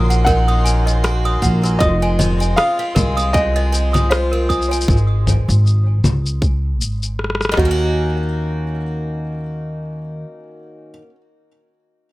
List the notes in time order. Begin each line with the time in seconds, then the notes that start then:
Already playing: A#1 D#3 A#3 F#4 F#5 C6
0.10 C#4 F#5, shaker
0.25 D#3 A#4 F#5, kick, shaker
0.48 A#3 D#6
0.65 C#4 G#5, shaker
0.86 A#3 D#5, shaker
1.04 F#4 G#5, cross-stick, shaker
1.25 C#4 D#6
1.42 A#1 A#3 F#5, kick, shaker
1.63 C#4 A#4, shaker
1.79 F1 F2 D#5 D#6, kick, shaker
2.02 G#3 G#5
2.19 C4 D#5, low conga, shaker
2.40 G#3 G#5, shaker
2.56 F4 F5 D#6, cross-stick, shaker
2.79 C4 F5
2.95 C2 G#3 A#4, kick, low conga, shaker
3.17 C4 D#6, shaker
3.33 F2 D#5 G#5, kick, shaker
3.56 G#3 D#5
3.72 C4 G#5, shaker
3.93 G#3 D#6, low conga, shaker
4.09 F4 C5 F5, cross-stick, shaker
4.32 C4 A#4
4.49 G#3 D#6, kick, shaker
4.62 shaker
4.71 C4 G#5, shaker
4.81 shaker
4.84 shaker
4.88 G#1, kick, shaker
4.97 shaker
5.27 low conga, shaker
5.48 G#1, shaker
5.67 shaker
6.04 C#2, low conga, shaker
6.26 shaker
6.42 kick, shaker
6.81 G#1, shaker
7.03 shaker
7.19 cross-stick
7.24 cross-stick
7.30 cross-stick
7.35 cross-stick
7.41 cross-stick, shaker
7.45 cross-stick
7.49 D#3, cross-stick
7.54 D#2 F#4 D#5, kick, cross-stick
7.59 A#3
7.65 C#4
7.71 F#4